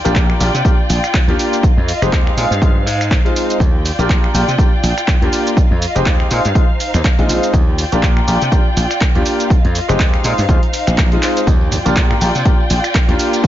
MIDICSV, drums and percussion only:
0, 0, Header, 1, 2, 480
1, 0, Start_track
1, 0, Key_signature, -3, "major"
1, 0, Tempo, 491803
1, 1597, Time_signature, 4, 2, 24, 8
1, 13147, End_track
2, 0, Start_track
2, 0, Title_t, "Drums"
2, 52, Note_on_c, 9, 42, 50
2, 53, Note_on_c, 9, 82, 41
2, 149, Note_off_c, 9, 42, 0
2, 151, Note_off_c, 9, 82, 0
2, 151, Note_on_c, 9, 39, 115
2, 152, Note_on_c, 9, 36, 107
2, 152, Note_on_c, 9, 42, 61
2, 154, Note_on_c, 9, 82, 31
2, 248, Note_off_c, 9, 39, 0
2, 250, Note_off_c, 9, 36, 0
2, 250, Note_off_c, 9, 42, 0
2, 251, Note_off_c, 9, 82, 0
2, 290, Note_on_c, 9, 26, 58
2, 387, Note_off_c, 9, 26, 0
2, 395, Note_on_c, 9, 46, 109
2, 396, Note_on_c, 9, 82, 68
2, 492, Note_off_c, 9, 46, 0
2, 494, Note_off_c, 9, 82, 0
2, 534, Note_on_c, 9, 42, 49
2, 535, Note_on_c, 9, 82, 42
2, 631, Note_off_c, 9, 42, 0
2, 633, Note_off_c, 9, 82, 0
2, 633, Note_on_c, 9, 36, 110
2, 638, Note_on_c, 9, 42, 61
2, 640, Note_on_c, 9, 82, 32
2, 731, Note_off_c, 9, 36, 0
2, 736, Note_off_c, 9, 42, 0
2, 737, Note_off_c, 9, 82, 0
2, 876, Note_on_c, 9, 46, 102
2, 877, Note_on_c, 9, 82, 71
2, 973, Note_off_c, 9, 46, 0
2, 975, Note_off_c, 9, 82, 0
2, 1014, Note_on_c, 9, 26, 58
2, 1014, Note_on_c, 9, 42, 47
2, 1016, Note_on_c, 9, 82, 38
2, 1112, Note_off_c, 9, 26, 0
2, 1112, Note_off_c, 9, 42, 0
2, 1113, Note_off_c, 9, 82, 0
2, 1114, Note_on_c, 9, 36, 104
2, 1117, Note_on_c, 9, 39, 124
2, 1119, Note_on_c, 9, 42, 64
2, 1120, Note_on_c, 9, 82, 32
2, 1211, Note_off_c, 9, 36, 0
2, 1215, Note_off_c, 9, 39, 0
2, 1216, Note_off_c, 9, 42, 0
2, 1218, Note_off_c, 9, 82, 0
2, 1254, Note_on_c, 9, 42, 34
2, 1352, Note_off_c, 9, 42, 0
2, 1360, Note_on_c, 9, 46, 113
2, 1361, Note_on_c, 9, 82, 69
2, 1458, Note_off_c, 9, 46, 0
2, 1459, Note_off_c, 9, 82, 0
2, 1495, Note_on_c, 9, 42, 53
2, 1496, Note_on_c, 9, 82, 43
2, 1592, Note_off_c, 9, 42, 0
2, 1594, Note_off_c, 9, 82, 0
2, 1594, Note_on_c, 9, 36, 120
2, 1601, Note_on_c, 9, 42, 58
2, 1603, Note_on_c, 9, 82, 32
2, 1692, Note_off_c, 9, 36, 0
2, 1699, Note_off_c, 9, 42, 0
2, 1700, Note_off_c, 9, 82, 0
2, 1839, Note_on_c, 9, 46, 101
2, 1841, Note_on_c, 9, 82, 73
2, 1937, Note_off_c, 9, 46, 0
2, 1938, Note_off_c, 9, 82, 0
2, 1975, Note_on_c, 9, 26, 60
2, 1975, Note_on_c, 9, 42, 47
2, 1976, Note_on_c, 9, 82, 40
2, 2072, Note_off_c, 9, 26, 0
2, 2072, Note_off_c, 9, 42, 0
2, 2074, Note_off_c, 9, 82, 0
2, 2075, Note_on_c, 9, 36, 105
2, 2079, Note_on_c, 9, 39, 107
2, 2080, Note_on_c, 9, 42, 61
2, 2082, Note_on_c, 9, 82, 31
2, 2172, Note_off_c, 9, 36, 0
2, 2176, Note_off_c, 9, 39, 0
2, 2178, Note_off_c, 9, 42, 0
2, 2179, Note_off_c, 9, 82, 0
2, 2218, Note_on_c, 9, 26, 60
2, 2315, Note_off_c, 9, 26, 0
2, 2319, Note_on_c, 9, 46, 105
2, 2321, Note_on_c, 9, 82, 73
2, 2417, Note_off_c, 9, 46, 0
2, 2418, Note_off_c, 9, 82, 0
2, 2457, Note_on_c, 9, 42, 44
2, 2459, Note_on_c, 9, 82, 43
2, 2555, Note_off_c, 9, 42, 0
2, 2555, Note_on_c, 9, 36, 108
2, 2556, Note_off_c, 9, 82, 0
2, 2562, Note_on_c, 9, 42, 63
2, 2564, Note_on_c, 9, 82, 32
2, 2652, Note_off_c, 9, 36, 0
2, 2660, Note_off_c, 9, 42, 0
2, 2661, Note_off_c, 9, 82, 0
2, 2803, Note_on_c, 9, 46, 106
2, 2804, Note_on_c, 9, 82, 72
2, 2900, Note_off_c, 9, 46, 0
2, 2902, Note_off_c, 9, 82, 0
2, 2938, Note_on_c, 9, 26, 61
2, 2938, Note_on_c, 9, 42, 49
2, 2939, Note_on_c, 9, 82, 41
2, 3035, Note_off_c, 9, 26, 0
2, 3035, Note_off_c, 9, 42, 0
2, 3035, Note_on_c, 9, 36, 100
2, 3037, Note_off_c, 9, 82, 0
2, 3042, Note_on_c, 9, 39, 121
2, 3044, Note_on_c, 9, 42, 61
2, 3045, Note_on_c, 9, 82, 32
2, 3133, Note_off_c, 9, 36, 0
2, 3140, Note_off_c, 9, 39, 0
2, 3141, Note_off_c, 9, 42, 0
2, 3143, Note_off_c, 9, 82, 0
2, 3181, Note_on_c, 9, 42, 32
2, 3279, Note_off_c, 9, 42, 0
2, 3283, Note_on_c, 9, 46, 114
2, 3284, Note_on_c, 9, 82, 74
2, 3380, Note_off_c, 9, 46, 0
2, 3382, Note_off_c, 9, 82, 0
2, 3418, Note_on_c, 9, 42, 51
2, 3419, Note_on_c, 9, 82, 45
2, 3515, Note_on_c, 9, 36, 111
2, 3516, Note_off_c, 9, 42, 0
2, 3517, Note_off_c, 9, 82, 0
2, 3525, Note_on_c, 9, 42, 59
2, 3526, Note_on_c, 9, 82, 31
2, 3613, Note_off_c, 9, 36, 0
2, 3623, Note_off_c, 9, 42, 0
2, 3624, Note_off_c, 9, 82, 0
2, 3762, Note_on_c, 9, 46, 97
2, 3764, Note_on_c, 9, 82, 72
2, 3860, Note_off_c, 9, 46, 0
2, 3861, Note_off_c, 9, 82, 0
2, 3897, Note_on_c, 9, 42, 48
2, 3898, Note_on_c, 9, 82, 44
2, 3994, Note_off_c, 9, 42, 0
2, 3996, Note_off_c, 9, 82, 0
2, 3996, Note_on_c, 9, 36, 100
2, 4001, Note_on_c, 9, 39, 107
2, 4003, Note_on_c, 9, 42, 60
2, 4004, Note_on_c, 9, 82, 34
2, 4093, Note_off_c, 9, 36, 0
2, 4099, Note_off_c, 9, 39, 0
2, 4100, Note_off_c, 9, 42, 0
2, 4102, Note_off_c, 9, 82, 0
2, 4139, Note_on_c, 9, 26, 56
2, 4237, Note_off_c, 9, 26, 0
2, 4242, Note_on_c, 9, 46, 103
2, 4244, Note_on_c, 9, 82, 77
2, 4340, Note_off_c, 9, 46, 0
2, 4341, Note_off_c, 9, 82, 0
2, 4378, Note_on_c, 9, 42, 46
2, 4379, Note_on_c, 9, 82, 42
2, 4475, Note_off_c, 9, 42, 0
2, 4475, Note_on_c, 9, 36, 114
2, 4477, Note_off_c, 9, 82, 0
2, 4482, Note_on_c, 9, 42, 61
2, 4484, Note_on_c, 9, 82, 33
2, 4572, Note_off_c, 9, 36, 0
2, 4580, Note_off_c, 9, 42, 0
2, 4581, Note_off_c, 9, 82, 0
2, 4720, Note_on_c, 9, 46, 100
2, 4721, Note_on_c, 9, 82, 74
2, 4817, Note_off_c, 9, 46, 0
2, 4819, Note_off_c, 9, 82, 0
2, 4857, Note_on_c, 9, 26, 64
2, 4857, Note_on_c, 9, 42, 49
2, 4859, Note_on_c, 9, 82, 46
2, 4955, Note_off_c, 9, 26, 0
2, 4955, Note_off_c, 9, 42, 0
2, 4955, Note_on_c, 9, 36, 99
2, 4956, Note_off_c, 9, 82, 0
2, 4957, Note_on_c, 9, 39, 110
2, 4959, Note_on_c, 9, 42, 65
2, 4960, Note_on_c, 9, 82, 35
2, 5053, Note_off_c, 9, 36, 0
2, 5055, Note_off_c, 9, 39, 0
2, 5057, Note_off_c, 9, 42, 0
2, 5058, Note_off_c, 9, 82, 0
2, 5098, Note_on_c, 9, 42, 34
2, 5196, Note_off_c, 9, 42, 0
2, 5200, Note_on_c, 9, 46, 99
2, 5201, Note_on_c, 9, 82, 77
2, 5298, Note_off_c, 9, 46, 0
2, 5299, Note_off_c, 9, 82, 0
2, 5338, Note_on_c, 9, 42, 50
2, 5339, Note_on_c, 9, 82, 46
2, 5434, Note_on_c, 9, 36, 115
2, 5435, Note_off_c, 9, 42, 0
2, 5437, Note_off_c, 9, 82, 0
2, 5441, Note_on_c, 9, 42, 62
2, 5442, Note_on_c, 9, 82, 35
2, 5532, Note_off_c, 9, 36, 0
2, 5538, Note_off_c, 9, 42, 0
2, 5540, Note_off_c, 9, 82, 0
2, 5680, Note_on_c, 9, 46, 93
2, 5681, Note_on_c, 9, 82, 77
2, 5777, Note_off_c, 9, 46, 0
2, 5779, Note_off_c, 9, 82, 0
2, 5816, Note_on_c, 9, 42, 50
2, 5817, Note_on_c, 9, 82, 43
2, 5913, Note_off_c, 9, 42, 0
2, 5915, Note_off_c, 9, 82, 0
2, 5915, Note_on_c, 9, 36, 100
2, 5915, Note_on_c, 9, 39, 114
2, 5917, Note_on_c, 9, 42, 60
2, 5918, Note_on_c, 9, 82, 34
2, 6013, Note_off_c, 9, 36, 0
2, 6013, Note_off_c, 9, 39, 0
2, 6015, Note_off_c, 9, 42, 0
2, 6016, Note_off_c, 9, 82, 0
2, 6051, Note_on_c, 9, 26, 58
2, 6149, Note_off_c, 9, 26, 0
2, 6156, Note_on_c, 9, 46, 97
2, 6157, Note_on_c, 9, 82, 79
2, 6254, Note_off_c, 9, 46, 0
2, 6255, Note_off_c, 9, 82, 0
2, 6294, Note_on_c, 9, 42, 49
2, 6296, Note_on_c, 9, 82, 45
2, 6392, Note_off_c, 9, 42, 0
2, 6393, Note_off_c, 9, 82, 0
2, 6395, Note_on_c, 9, 36, 109
2, 6398, Note_on_c, 9, 42, 67
2, 6399, Note_on_c, 9, 82, 32
2, 6493, Note_off_c, 9, 36, 0
2, 6496, Note_off_c, 9, 42, 0
2, 6497, Note_off_c, 9, 82, 0
2, 6638, Note_on_c, 9, 46, 98
2, 6640, Note_on_c, 9, 82, 74
2, 6736, Note_off_c, 9, 46, 0
2, 6737, Note_off_c, 9, 82, 0
2, 6775, Note_on_c, 9, 26, 64
2, 6775, Note_on_c, 9, 42, 50
2, 6777, Note_on_c, 9, 82, 43
2, 6873, Note_off_c, 9, 26, 0
2, 6873, Note_off_c, 9, 42, 0
2, 6874, Note_off_c, 9, 82, 0
2, 6875, Note_on_c, 9, 36, 97
2, 6880, Note_on_c, 9, 39, 117
2, 6881, Note_on_c, 9, 42, 67
2, 6883, Note_on_c, 9, 82, 33
2, 6972, Note_off_c, 9, 36, 0
2, 6977, Note_off_c, 9, 39, 0
2, 6979, Note_off_c, 9, 42, 0
2, 6980, Note_off_c, 9, 82, 0
2, 7016, Note_on_c, 9, 42, 36
2, 7114, Note_off_c, 9, 42, 0
2, 7118, Note_on_c, 9, 46, 106
2, 7120, Note_on_c, 9, 82, 81
2, 7216, Note_off_c, 9, 46, 0
2, 7217, Note_off_c, 9, 82, 0
2, 7254, Note_on_c, 9, 42, 53
2, 7255, Note_on_c, 9, 82, 46
2, 7351, Note_off_c, 9, 42, 0
2, 7353, Note_off_c, 9, 82, 0
2, 7354, Note_on_c, 9, 36, 105
2, 7357, Note_on_c, 9, 42, 65
2, 7359, Note_on_c, 9, 82, 35
2, 7452, Note_off_c, 9, 36, 0
2, 7455, Note_off_c, 9, 42, 0
2, 7456, Note_off_c, 9, 82, 0
2, 7597, Note_on_c, 9, 46, 93
2, 7598, Note_on_c, 9, 82, 74
2, 7695, Note_off_c, 9, 46, 0
2, 7696, Note_off_c, 9, 82, 0
2, 7733, Note_on_c, 9, 42, 53
2, 7734, Note_on_c, 9, 82, 46
2, 7831, Note_off_c, 9, 42, 0
2, 7832, Note_off_c, 9, 82, 0
2, 7834, Note_on_c, 9, 36, 95
2, 7837, Note_on_c, 9, 39, 109
2, 7838, Note_on_c, 9, 42, 63
2, 7840, Note_on_c, 9, 82, 32
2, 7932, Note_off_c, 9, 36, 0
2, 7934, Note_off_c, 9, 39, 0
2, 7936, Note_off_c, 9, 42, 0
2, 7937, Note_off_c, 9, 82, 0
2, 7972, Note_on_c, 9, 26, 60
2, 8069, Note_off_c, 9, 26, 0
2, 8079, Note_on_c, 9, 46, 93
2, 8080, Note_on_c, 9, 82, 82
2, 8176, Note_off_c, 9, 46, 0
2, 8178, Note_off_c, 9, 82, 0
2, 8214, Note_on_c, 9, 42, 49
2, 8215, Note_on_c, 9, 82, 42
2, 8312, Note_off_c, 9, 42, 0
2, 8313, Note_off_c, 9, 82, 0
2, 8314, Note_on_c, 9, 36, 99
2, 8318, Note_on_c, 9, 42, 67
2, 8319, Note_on_c, 9, 82, 34
2, 8412, Note_off_c, 9, 36, 0
2, 8416, Note_off_c, 9, 42, 0
2, 8417, Note_off_c, 9, 82, 0
2, 8558, Note_on_c, 9, 46, 93
2, 8560, Note_on_c, 9, 82, 77
2, 8656, Note_off_c, 9, 46, 0
2, 8657, Note_off_c, 9, 82, 0
2, 8693, Note_on_c, 9, 26, 58
2, 8693, Note_on_c, 9, 42, 52
2, 8695, Note_on_c, 9, 82, 47
2, 8791, Note_off_c, 9, 26, 0
2, 8791, Note_off_c, 9, 42, 0
2, 8792, Note_off_c, 9, 82, 0
2, 8795, Note_on_c, 9, 36, 97
2, 8795, Note_on_c, 9, 39, 119
2, 8797, Note_on_c, 9, 42, 68
2, 8798, Note_on_c, 9, 82, 35
2, 8892, Note_off_c, 9, 36, 0
2, 8893, Note_off_c, 9, 39, 0
2, 8894, Note_off_c, 9, 42, 0
2, 8896, Note_off_c, 9, 82, 0
2, 8934, Note_on_c, 9, 42, 34
2, 9032, Note_off_c, 9, 42, 0
2, 9035, Note_on_c, 9, 46, 96
2, 9036, Note_on_c, 9, 82, 85
2, 9132, Note_off_c, 9, 46, 0
2, 9134, Note_off_c, 9, 82, 0
2, 9175, Note_on_c, 9, 42, 55
2, 9176, Note_on_c, 9, 82, 48
2, 9272, Note_off_c, 9, 42, 0
2, 9274, Note_off_c, 9, 82, 0
2, 9275, Note_on_c, 9, 36, 109
2, 9282, Note_on_c, 9, 42, 64
2, 9283, Note_on_c, 9, 82, 31
2, 9373, Note_off_c, 9, 36, 0
2, 9379, Note_off_c, 9, 42, 0
2, 9381, Note_off_c, 9, 82, 0
2, 9415, Note_on_c, 9, 42, 37
2, 9513, Note_off_c, 9, 42, 0
2, 9518, Note_on_c, 9, 46, 92
2, 9519, Note_on_c, 9, 82, 75
2, 9615, Note_off_c, 9, 46, 0
2, 9617, Note_off_c, 9, 82, 0
2, 9656, Note_on_c, 9, 26, 55
2, 9656, Note_on_c, 9, 42, 51
2, 9657, Note_on_c, 9, 82, 44
2, 9753, Note_off_c, 9, 26, 0
2, 9753, Note_off_c, 9, 42, 0
2, 9755, Note_off_c, 9, 82, 0
2, 9755, Note_on_c, 9, 36, 93
2, 9758, Note_on_c, 9, 39, 116
2, 9759, Note_on_c, 9, 42, 67
2, 9761, Note_on_c, 9, 82, 33
2, 9853, Note_off_c, 9, 36, 0
2, 9855, Note_off_c, 9, 39, 0
2, 9857, Note_off_c, 9, 42, 0
2, 9858, Note_off_c, 9, 82, 0
2, 9893, Note_on_c, 9, 26, 57
2, 9893, Note_on_c, 9, 42, 37
2, 9991, Note_off_c, 9, 26, 0
2, 9991, Note_off_c, 9, 42, 0
2, 9997, Note_on_c, 9, 46, 93
2, 9998, Note_on_c, 9, 82, 82
2, 10094, Note_off_c, 9, 46, 0
2, 10096, Note_off_c, 9, 82, 0
2, 10133, Note_on_c, 9, 46, 55
2, 10134, Note_on_c, 9, 82, 43
2, 10231, Note_off_c, 9, 46, 0
2, 10232, Note_off_c, 9, 82, 0
2, 10235, Note_on_c, 9, 36, 102
2, 10238, Note_on_c, 9, 42, 66
2, 10239, Note_on_c, 9, 82, 36
2, 10333, Note_off_c, 9, 36, 0
2, 10335, Note_off_c, 9, 42, 0
2, 10337, Note_off_c, 9, 82, 0
2, 10373, Note_on_c, 9, 42, 38
2, 10471, Note_off_c, 9, 42, 0
2, 10476, Note_on_c, 9, 46, 98
2, 10478, Note_on_c, 9, 82, 73
2, 10574, Note_off_c, 9, 46, 0
2, 10575, Note_off_c, 9, 82, 0
2, 10612, Note_on_c, 9, 26, 61
2, 10612, Note_on_c, 9, 42, 54
2, 10614, Note_on_c, 9, 82, 47
2, 10710, Note_off_c, 9, 26, 0
2, 10710, Note_off_c, 9, 42, 0
2, 10712, Note_off_c, 9, 82, 0
2, 10716, Note_on_c, 9, 36, 102
2, 10716, Note_on_c, 9, 39, 119
2, 10718, Note_on_c, 9, 42, 71
2, 10719, Note_on_c, 9, 82, 37
2, 10813, Note_off_c, 9, 36, 0
2, 10814, Note_off_c, 9, 39, 0
2, 10815, Note_off_c, 9, 42, 0
2, 10817, Note_off_c, 9, 82, 0
2, 10852, Note_on_c, 9, 42, 36
2, 10950, Note_off_c, 9, 42, 0
2, 10957, Note_on_c, 9, 39, 88
2, 10957, Note_on_c, 9, 46, 100
2, 10959, Note_on_c, 9, 82, 85
2, 11055, Note_off_c, 9, 39, 0
2, 11055, Note_off_c, 9, 46, 0
2, 11056, Note_off_c, 9, 82, 0
2, 11096, Note_on_c, 9, 42, 57
2, 11097, Note_on_c, 9, 82, 46
2, 11193, Note_off_c, 9, 42, 0
2, 11195, Note_off_c, 9, 82, 0
2, 11196, Note_on_c, 9, 36, 110
2, 11200, Note_on_c, 9, 42, 61
2, 11201, Note_on_c, 9, 54, 59
2, 11201, Note_on_c, 9, 82, 31
2, 11293, Note_off_c, 9, 36, 0
2, 11297, Note_off_c, 9, 42, 0
2, 11299, Note_off_c, 9, 54, 0
2, 11299, Note_off_c, 9, 82, 0
2, 11329, Note_on_c, 9, 54, 40
2, 11427, Note_off_c, 9, 54, 0
2, 11438, Note_on_c, 9, 46, 93
2, 11438, Note_on_c, 9, 64, 81
2, 11440, Note_on_c, 9, 82, 71
2, 11535, Note_off_c, 9, 64, 0
2, 11536, Note_off_c, 9, 46, 0
2, 11537, Note_off_c, 9, 82, 0
2, 11574, Note_on_c, 9, 42, 53
2, 11575, Note_on_c, 9, 82, 42
2, 11577, Note_on_c, 9, 54, 82
2, 11577, Note_on_c, 9, 63, 58
2, 11672, Note_off_c, 9, 42, 0
2, 11673, Note_off_c, 9, 82, 0
2, 11674, Note_off_c, 9, 54, 0
2, 11675, Note_off_c, 9, 63, 0
2, 11676, Note_on_c, 9, 36, 99
2, 11677, Note_on_c, 9, 39, 118
2, 11679, Note_on_c, 9, 42, 63
2, 11680, Note_on_c, 9, 82, 33
2, 11773, Note_off_c, 9, 36, 0
2, 11775, Note_off_c, 9, 39, 0
2, 11776, Note_off_c, 9, 42, 0
2, 11777, Note_off_c, 9, 82, 0
2, 11814, Note_on_c, 9, 54, 43
2, 11814, Note_on_c, 9, 64, 93
2, 11816, Note_on_c, 9, 26, 55
2, 11911, Note_off_c, 9, 54, 0
2, 11911, Note_off_c, 9, 64, 0
2, 11914, Note_off_c, 9, 26, 0
2, 11920, Note_on_c, 9, 46, 106
2, 11921, Note_on_c, 9, 82, 78
2, 12017, Note_off_c, 9, 46, 0
2, 12019, Note_off_c, 9, 82, 0
2, 12054, Note_on_c, 9, 42, 49
2, 12056, Note_on_c, 9, 82, 40
2, 12060, Note_on_c, 9, 54, 74
2, 12152, Note_off_c, 9, 42, 0
2, 12152, Note_off_c, 9, 54, 0
2, 12152, Note_on_c, 9, 54, 60
2, 12153, Note_off_c, 9, 82, 0
2, 12156, Note_on_c, 9, 36, 114
2, 12156, Note_on_c, 9, 42, 68
2, 12158, Note_on_c, 9, 64, 83
2, 12158, Note_on_c, 9, 82, 32
2, 12249, Note_off_c, 9, 54, 0
2, 12253, Note_off_c, 9, 36, 0
2, 12254, Note_off_c, 9, 42, 0
2, 12255, Note_off_c, 9, 82, 0
2, 12256, Note_off_c, 9, 64, 0
2, 12300, Note_on_c, 9, 54, 39
2, 12396, Note_on_c, 9, 46, 103
2, 12397, Note_on_c, 9, 82, 75
2, 12398, Note_off_c, 9, 54, 0
2, 12493, Note_off_c, 9, 46, 0
2, 12495, Note_off_c, 9, 82, 0
2, 12533, Note_on_c, 9, 26, 56
2, 12533, Note_on_c, 9, 42, 55
2, 12535, Note_on_c, 9, 82, 43
2, 12538, Note_on_c, 9, 54, 79
2, 12631, Note_off_c, 9, 26, 0
2, 12631, Note_off_c, 9, 42, 0
2, 12632, Note_off_c, 9, 82, 0
2, 12635, Note_on_c, 9, 36, 101
2, 12636, Note_off_c, 9, 54, 0
2, 12638, Note_on_c, 9, 39, 127
2, 12639, Note_on_c, 9, 42, 66
2, 12641, Note_on_c, 9, 82, 34
2, 12733, Note_off_c, 9, 36, 0
2, 12735, Note_off_c, 9, 39, 0
2, 12737, Note_off_c, 9, 42, 0
2, 12738, Note_off_c, 9, 82, 0
2, 12773, Note_on_c, 9, 54, 38
2, 12774, Note_on_c, 9, 42, 36
2, 12871, Note_off_c, 9, 54, 0
2, 12872, Note_off_c, 9, 42, 0
2, 12877, Note_on_c, 9, 46, 102
2, 12878, Note_on_c, 9, 82, 77
2, 12975, Note_off_c, 9, 46, 0
2, 12976, Note_off_c, 9, 82, 0
2, 13014, Note_on_c, 9, 42, 56
2, 13015, Note_on_c, 9, 54, 73
2, 13015, Note_on_c, 9, 82, 46
2, 13111, Note_off_c, 9, 42, 0
2, 13113, Note_off_c, 9, 54, 0
2, 13113, Note_off_c, 9, 82, 0
2, 13115, Note_on_c, 9, 36, 121
2, 13116, Note_on_c, 9, 42, 64
2, 13117, Note_on_c, 9, 82, 31
2, 13147, Note_off_c, 9, 36, 0
2, 13147, Note_off_c, 9, 42, 0
2, 13147, Note_off_c, 9, 82, 0
2, 13147, End_track
0, 0, End_of_file